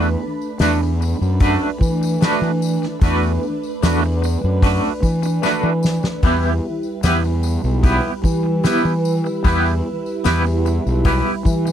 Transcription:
0.00 0.15 E2 medium
0.00 6.20 A3 medium
0.00 6.19 D4 medium
0.00 11.72 B4 loud
0.00 tambourine soft
0.42 tambourine soft
0.59 1.13 E2 loud
0.59 0.80 A3 medium
0.59 0.80 D4 medium
0.59 0.80 F#4 medium
0.59 0.79 B4 medium
0.59 snare loud
0.59 open hi-hat soft
0.59 tambourine medium
0.81 muted clean electric guitar stroke soft
0.81 tambourine soft
1.00 muted clean electric guitar stroke soft
1.00 tambourine medium
1.21 1.56 F#2 medium
1.21 tambourine soft
1.40 1.67 A3 medium
1.40 1.67 D4 medium
1.40 1.67 F#4 medium
1.40 1.68 B4 medium
1.40 kick loud
1.40 open hi-hat medium
1.40 tambourine soft
1.81 2.16 E3 medium
1.81 kick medium
1.81 tambourine medium
2.01 muted clean electric guitar stroke soft
2.01 tambourine medium
2.21 2.47 A3 medium
2.21 2.48 D4 medium
2.21 2.48 F#4 medium
2.21 2.48 B4 loud
2.21 snare loud
2.21 open hi-hat medium
2.21 tambourine medium
2.42 2.77 E3 medium
2.42 tambourine soft
2.62 tambourine medium
2.82 muted clean electric guitar stroke medium
2.82 snare soft
2.82 tambourine soft
3.01 3.37 E2 medium
3.01 3.28 A3 medium
3.01 3.29 D4 medium
3.01 3.29 F#4 medium
3.01 3.29 B4 medium
3.01 kick loud
3.01 open hi-hat soft
3.01 tambourine soft
3.23 tambourine soft
3.43 tambourine soft
3.63 tambourine soft
3.82 4.36 E2 medium
3.82 4.02 A3 medium
3.82 4.02 D4 medium
3.82 4.02 F#4 medium
3.82 4.01 B4 medium
3.82 snare loud
3.82 open hi-hat medium
3.82 tambourine loud
4.03 muted clean electric guitar stroke soft
4.03 tambourine soft
4.22 muted clean electric guitar stroke soft
4.22 tambourine medium
4.44 4.78 F#2 medium
4.62 4.89 A3 medium
4.62 4.89 D4 medium
4.62 4.89 F#4 medium
4.62 4.89 B4 medium
4.62 kick loud
4.62 open hi-hat medium
4.62 tambourine soft
4.84 tambourine soft
5.03 5.38 E3 medium
5.03 kick medium
5.03 tambourine medium
5.22 muted clean electric guitar stroke soft
5.22 tambourine medium
5.42 5.69 A3 medium
5.42 5.69 D4 medium
5.42 5.69 F#4 medium
5.42 5.69 B4 medium
5.42 snare medium
5.42 tambourine medium
5.63 5.98 E3 medium
5.63 tambourine soft
5.83 snare medium
5.83 tambourine medium
6.03 muted clean electric guitar stroke soft
6.03 snare medium
6.03 tambourine soft
6.23 6.58 E2 loud
6.23 11.72 G3 medium
6.23 6.49 B3 medium
6.23 6.50 E4 medium
6.23 11.72 E4 medium
6.23 6.50 G4 medium
6.23 6.50 B4 medium
6.23 kick loud
6.23 open hi-hat soft
6.23 tambourine soft
6.43 tambourine soft
6.83 tambourine soft
7.03 7.56 E2 medium
7.03 7.22 B3 medium
7.03 7.22 E4 medium
7.03 7.22 G4 loud
7.03 7.22 B4 medium
7.03 snare loud
7.03 open hi-hat medium
7.03 tambourine loud
7.23 muted clean electric guitar stroke soft
7.23 tambourine soft
7.43 muted clean electric guitar stroke soft
7.43 tambourine medium
7.64 7.99 B1 medium
7.64 tambourine soft
7.83 8.10 B3 medium
7.83 8.10 E4 medium
7.83 8.10 G4 medium
7.83 8.10 B4 medium
7.83 kick loud
7.83 open hi-hat medium
7.83 tambourine soft
8.24 8.60 E3 medium
8.24 kick medium
8.24 tambourine medium
8.43 muted clean electric guitar stroke soft
8.63 8.90 B3 medium
8.63 8.90 E4 medium
8.63 8.91 G4 medium
8.63 8.91 B4 medium
8.63 snare loud
8.63 open hi-hat soft
8.63 tambourine loud
8.85 9.20 E3 medium
8.85 tambourine soft
9.05 tambourine medium
9.24 muted clean electric guitar stroke soft
9.24 tambourine soft
9.44 9.80 E2 medium
9.44 9.71 B3 medium
9.44 9.71 E4 medium
9.44 9.71 G4 medium
9.44 9.71 B4 loud
9.44 kick loud
9.44 open hi-hat medium
9.44 tambourine soft
9.66 tambourine soft
10.06 tambourine soft
10.24 10.78 E2 medium
10.24 10.45 B3 medium
10.24 10.44 E4 medium
10.24 10.44 G4 medium
10.24 10.44 B4 loud
10.24 snare loud
10.24 open hi-hat medium
10.24 tambourine loud
10.45 muted clean electric guitar stroke soft
10.45 tambourine soft
10.65 muted clean electric guitar stroke soft
10.65 tambourine medium
10.86 11.21 B1 medium
10.86 tambourine soft
11.05 11.31 B3 medium
11.05 11.32 E4 medium
11.05 11.32 G4 medium
11.05 11.32 B4 medium
11.05 kick loud
11.05 open hi-hat medium
11.05 tambourine soft
11.45 11.72 E3 medium
11.45 kick medium
11.45 tambourine medium
11.65 muted clean electric guitar stroke soft
11.65 tambourine medium

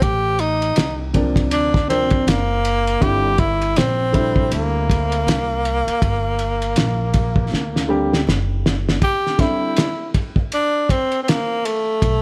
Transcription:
0.02 0.73 A1 medium
0.02 0.42 G4 loud
0.02 kick loud
0.02 ride medium
0.39 1.15 D#4 medium
0.39 ride soft
0.62 ride soft
0.76 1.52 C2 medium
0.76 snare loud
0.76 hi-hat pedal soft
0.76 ride medium
1.13 1.69 C3 medium
1.13 1.70 F3 medium
1.13 1.70 A#3 medium
1.13 1.70 D4 medium
1.13 kick medium
1.13 ride soft
1.36 kick medium
1.36 ride soft
1.51 2.23 D2 medium
1.51 1.87 D4 medium
1.51 ride medium
1.74 kick medium
1.74 snare soft
1.88 2.35 C3 medium
1.88 2.36 F3 medium
1.88 2.36 A#3 soft
1.88 2.30 C4 medium
1.88 2.37 D4 medium
1.88 ride medium
2.10 kick medium
2.10 ride soft
2.27 2.98 F#1 medium
2.27 3.04 A#3 medium
2.27 snare loud
2.27 hi-hat pedal soft
2.27 ride medium
2.65 ride medium
2.87 ride soft
3.00 3.73 G1 loud
3.00 3.30 D3 medium
3.00 3.30 G3 medium
3.00 3.30 C4 medium
3.00 3.31 E4 medium
3.00 3.41 G4 loud
3.00 kick loud
3.00 ride medium
3.38 3.79 E4 medium
3.38 kick medium
3.38 ride soft
3.62 ride soft
3.76 4.48 A#1 medium
3.76 4.52 C4 medium
3.76 snare loud
3.76 hi-hat pedal soft
3.76 ride medium
4.12 5.20 D3 medium
4.12 5.20 G3 medium
4.12 5.21 C4 medium
4.12 5.21 E4 medium
4.12 kick medium
4.12 ride soft
4.36 kick medium
4.51 5.23 D2 medium
4.51 8.24 A#3 medium
4.51 ride medium
4.90 kick medium
4.90 ride medium
5.12 ride soft
5.27 5.84 C2 medium
5.27 snare loud
5.27 hi-hat pedal medium
5.27 ride medium
5.65 ride medium
5.87 muted upright bass stroke soft
5.87 ride soft
6.02 6.73 G1 loud
6.02 kick loud
6.02 ride medium
6.39 ride soft
6.62 ride soft
6.76 7.48 A#1 medium
6.76 snare loud
6.76 hi-hat pedal soft
6.76 ride medium
7.14 kick medium
7.14 ride medium
7.36 kick medium
7.52 8.23 D2 medium
7.52 snare soft
7.76 snare medium
7.88 8.17 D3 medium
7.88 8.17 G3 medium
7.88 8.18 C4 medium
7.88 8.18 G4 medium
8.13 snare medium
8.27 8.98 F#1 medium
8.27 snare medium
8.66 snare medium
8.89 snare medium
9.02 9.42 G4 loud
9.02 kick loud
9.02 ride medium
9.27 snare soft
9.38 9.85 D3 medium
9.38 9.86 G3 medium
9.38 9.86 C4 medium
9.38 10.15 E4 medium
9.38 9.87 E4 medium
9.38 kick medium
9.38 snare soft
9.38 ride soft
9.76 snare loud
9.76 hi-hat pedal soft
9.76 ride medium
10.14 kick medium
10.14 ride soft
10.36 kick medium
10.52 10.92 D4 loud
10.52 ride medium
10.89 11.22 C4 medium
10.89 kick medium
10.89 ride soft
11.12 ride soft
11.23 11.30 C4 medium
11.28 11.68 A#3 medium
11.28 snare loud
11.28 hi-hat pedal soft
11.28 ride medium
11.65 12.22 A3 medium
11.65 ride medium
12.02 12.22 B1 medium
12.02 kick loud
12.02 ride medium

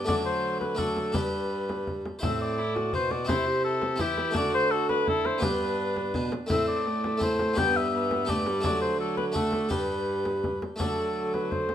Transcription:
0.04 1.16 D3 medium
0.04 1.11 D3 medium
0.04 0.74 A3 soft
0.04 0.75 D4 soft
0.04 0.76 F#4 soft
0.04 0.15 D5 medium
0.04 frame drum medium
0.09 0.78 F#3 medium
0.25 0.60 C5 medium
0.60 0.80 B4 medium
0.60 frame drum soft
0.75 1.16 F#3 medium
0.75 1.11 A3 soft
0.75 1.11 D4 soft
0.75 1.13 F#4 soft
0.75 1.16 A4 medium
0.75 frame drum soft
0.97 frame drum soft
1.12 2.01 G2 soft
1.12 2.05 G2 medium
1.12 2.05 G3 medium
1.12 2.18 D4 soft
1.12 2.19 G4 soft
1.12 2.05 B4 medium
1.12 frame drum medium
1.69 frame drum soft
1.87 frame drum soft
2.06 frame drum soft
2.19 2.90 A2 medium
2.19 3.25 E4 soft
2.19 3.24 C5 soft
2.19 frame drum medium
2.23 2.60 C4 medium
2.23 2.39 E5 medium
2.41 2.93 D5 medium
2.59 2.77 E4 medium
2.75 3.31 F#4 medium
2.75 frame drum soft
2.93 3.30 B2 medium
2.93 3.26 B2 medium
2.93 3.13 C5 medium
2.93 frame drum soft
3.11 3.27 D5 medium
3.11 frame drum soft
3.25 3.96 C3 medium
3.25 3.95 C4 soft
3.25 3.96 E4 medium
3.25 3.63 C5 medium
3.29 3.99 C3 medium
3.29 3.48 E4 medium
3.29 frame drum medium
3.46 4.02 G4 medium
3.64 4.02 A4 medium
3.82 frame drum medium
3.96 4.36 E3 medium
3.96 4.32 E3 medium
3.96 4.32 C4 medium
3.96 4.33 E4 medium
3.96 frame drum medium
4.01 4.34 E4 medium
4.01 4.36 G4 medium
4.17 frame drum medium
4.31 5.38 D3 medium
4.31 5.37 A3 medium
4.31 5.38 D4 medium
4.31 5.38 F#4 medium
4.35 5.42 D3 medium
4.35 4.70 F#4 medium
4.35 4.53 D5 loud
4.35 frame drum medium
4.54 4.73 C5 loud
4.71 5.07 F#4 medium
4.71 4.88 A4 medium
4.89 5.07 B4 loud
4.89 frame drum medium
5.08 5.45 E4 medium
5.08 5.27 A4 loud
5.08 frame drum medium
5.25 5.43 C5 medium
5.25 frame drum soft
5.38 6.11 G2 medium
5.38 6.45 B3 medium
5.38 6.46 D4 soft
5.38 6.47 G4 medium
5.38 frame drum medium
5.43 6.16 G2 medium
5.43 6.33 D4 medium
5.43 6.32 B4 medium
5.97 frame drum soft
6.14 6.31 B2 medium
6.14 6.33 B2 medium
6.14 frame drum soft
6.32 frame drum medium
6.46 7.54 A2 medium
6.46 7.16 A3 soft
6.46 7.18 C4 medium
6.46 7.19 E4 soft
6.46 frame drum medium
6.51 7.59 A2 medium
6.51 6.89 C4 medium
6.51 6.67 E5 loud
6.68 7.21 D5 medium
6.87 7.59 A3 medium
7.04 frame drum medium
7.17 7.54 A3 medium
7.17 7.55 C4 medium
7.17 7.56 E4 medium
7.17 frame drum medium
7.23 7.60 C5 loud
7.39 frame drum medium
7.54 8.64 G2 medium
7.54 8.60 G2 medium
7.54 8.24 B3 medium
7.54 8.25 D4 medium
7.54 8.26 G4 medium
7.58 7.93 B3 medium
7.58 7.78 G5 loud
7.58 frame drum medium
7.76 8.31 E5 loud
7.93 8.30 B3 medium
8.11 frame drum medium
8.25 8.48 A3 medium
8.25 8.61 B3 medium
8.25 8.60 D4 medium
8.25 8.62 G4 medium
8.25 frame drum medium
8.30 8.64 D5 medium
8.46 8.65 G3 medium
8.46 frame drum medium
8.60 9.68 D3 medium
8.60 9.72 D3 medium
8.60 8.99 F#3 medium
8.60 9.31 A3 medium
8.60 9.32 D4 medium
8.60 9.33 F#4 medium
8.60 frame drum medium
8.65 8.81 D5 loud
8.81 8.99 C5 medium
8.99 9.37 F#3 medium
8.99 9.17 A4 medium
9.17 9.25 B4 medium
9.17 frame drum soft
9.32 9.69 A3 soft
9.32 9.73 A3 medium
9.32 9.68 D4 medium
9.32 9.70 F#4 medium
9.32 9.71 A4 medium
9.32 frame drum medium
9.52 frame drum medium
9.69 10.62 G2 medium
9.69 10.58 G2 soft
9.69 10.62 G3 medium
9.69 10.76 D4 soft
9.69 10.76 G4 soft
9.69 10.61 B4 medium
9.69 frame drum medium
10.25 frame drum soft
10.44 frame drum medium
10.62 frame drum medium
10.76 11.75 A3 soft
10.76 11.75 D4 soft
10.76 11.75 F#4 soft
10.76 11.30 A4 medium
10.76 frame drum medium
10.80 11.75 D3 medium
10.80 11.75 D3 soft
10.80 11.75 F#3 medium
11.34 11.54 B4 medium
11.34 frame drum soft
11.52 11.75 C5 medium
11.52 frame drum soft
11.69 frame drum soft

